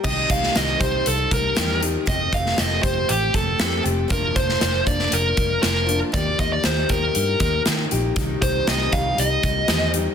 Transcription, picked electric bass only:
X:1
M:4/4
L:1/8
Q:1/4=118
K:Cdor
V:1 name="Picked electric bass" clef=bass
C,, C,, C,, C,, C,, C,, =E,,2 | F,,, F,,, F,,, F,,, A,,, F,,, F,, F,,, | F,,, F,,, F,,, F,,, F,,, F,,, F,,,2 | E,, E,, E,, E,, G,, E,, E, B,,, |
C,, C,, C,, C,, C,, C,, =E,,2 |]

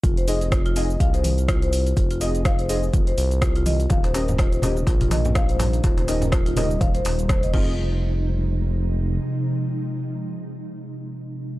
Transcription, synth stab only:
X:1
M:4/4
L:1/8
Q:"Swing 16ths" 1/4=124
K:Fm
V:1 name="Synth stab"
z [CEFAe]2 [CEFAe] z4 | z [CEFAe]2 [CEFAe] z4 | z [DEGBe]2 [DEGBe] z4 | z [DEGBe]2 [DEGBe] z3 [CEFAe]- |
[CEFAe]8- | [CEFAe]8 |]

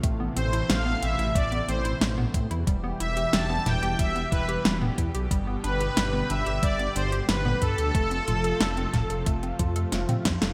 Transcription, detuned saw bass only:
X:1
M:4/4
L:1/16
Q:1/4=91
K:Am
V:1 name="Detuned saw bass" clef=bass
A,,,2 A,,,2 A,,,2 A,,, A,,, A,,,2 A,,,2 A,,,2 A,, E,, | E,,,2 E,,,2 E,,,2 E,,, E,,, E,,,2 E,,,2 E,,,2 E,, B,,, | G,,,2 G,,,2 G,,,2 G,,, G,,, G,,,2 G,,,2 G,,,2 G,, D,, | F,,,2 F,,,2 F,,,2 F,,, F,,, F,,,2 F,,2 F,,, z F,, F,,, |]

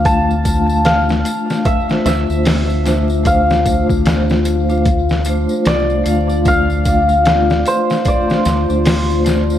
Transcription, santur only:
X:1
M:4/4
L:1/8
Q:"Swing 16ths" 1/4=75
K:Dm
V:1 name="Santur"
a2 f2 e e3 | f4 z2 d2 | f3 c d4 |]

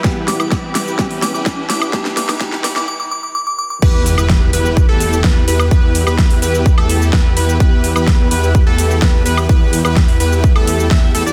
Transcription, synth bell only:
X:1
M:4/4
L:1/16
Q:1/4=127
K:Em
V:1 name="Synth bell"
z2 d' d' z2 d' z3 d' d' z2 d' z | z2 d' d' z2 d' d' d' d' d' d' d' d' d' d' | z16 | z16 |
z16 | z16 |]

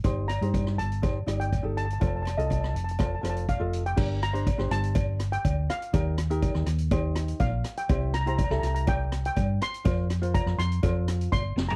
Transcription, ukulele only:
X:1
M:4/4
L:1/16
Q:1/4=122
K:Cdor
V:1 name="Ukulele"
[EGc]2 z [EGc]3 z2 [EGc] z [EGd]2 z [EGA]2 z | [FAc]2 z [FAe]3 z2 [FAc] z [FAc]2 z [FAe]2 z | [DGB]2 z [DGc] z [DGc]4- [DGc] z6 | [EGB]2 z [EGB]3 z2 [EGc]4- [EGc] z3 |
[=EGc]2 z [EGc] z [EGA]4- [EGA] z6 | [FBc]2 z [FBc]3 z2 [FAc]4- [FAc] z3 |]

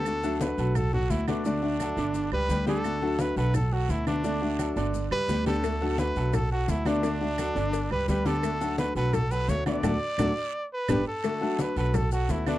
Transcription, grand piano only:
X:1
M:4/4
L:1/8
Q:1/4=172
K:Bm
V:1 name="Grand piano"
z [F,FA]2 [F,FA]2 [F,FA]2 [D,Dd] | [D,Dd]2 [F,FA] [D,Dd]2 [G,GB] [G,GB] [D,Dd]- | [D,Dd] [F,FA]2 [F,FA]2 [F,FA]2 [D,Dd] | [D,Dd]2 [F,FA] [D,Dd]2 [G,GB] [G,GB] [D,Dd]- |
[D,Dd] [F,FA]2 [F,FA]2 [F,FA]2 [D,Dd] | [D,Dd]2 [F,FA] [D,Dd]2 [G,GB] [G,GB] [D,Dd]- | [D,Dd] [F,FA]2 [F,FA]2 [F,FA]2 [D,Dd] | [DFA] z [DFA] z3 [B,DG] z |
z [F,FA]2 [F,FA]2 [F,FA]2 [D,Dd] |]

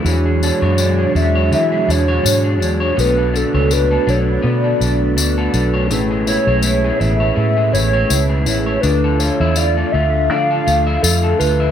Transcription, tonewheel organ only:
X:1
M:4/4
L:1/8
Q:"Swing 16ths" 1/4=82
K:A
V:1 name="Tonewheel organ"
[DFGc]8 | [DFAB]8 | [CEGB]8 | [D=FGA]8 |]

